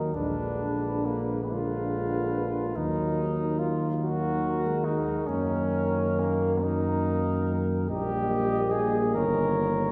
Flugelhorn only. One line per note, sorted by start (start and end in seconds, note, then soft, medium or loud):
0.00 0.15 D#4 soft
0.14 1.07 D4 medium
1.06 1.52 A#3 soft
1.51 2.78 F4 medium
2.76 3.61 D#4 medium
3.59 3.89 F4 soft
4.01 4.86 F#4 medium
4.84 5.29 D#4 medium
5.27 6.21 C#4 medium
6.20 6.64 A#3 medium
6.63 7.63 D#4 medium
7.88 8.73 G4 medium
8.72 9.14 G#4 medium
9.14 9.92 A#4 medium